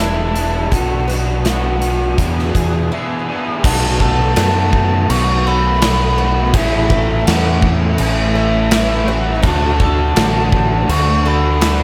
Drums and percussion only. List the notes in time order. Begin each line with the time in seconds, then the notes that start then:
0.36 closed hi-hat
0.72 kick, closed hi-hat
1.09 closed hi-hat
1.45 snare, closed hi-hat
1.82 closed hi-hat
2.18 kick, closed hi-hat
2.39 snare
2.55 kick, closed hi-hat
3.64 kick, crash
4.00 kick
4.36 snare, crash
4.73 kick
5.10 crash
5.82 snare, crash
6.54 kick, crash
6.90 kick
7.27 snare, crash
7.62 kick
7.98 crash
8.71 snare, crash
9.43 kick, crash
9.80 kick
10.16 snare, crash
10.52 kick
10.89 crash
11.61 snare, crash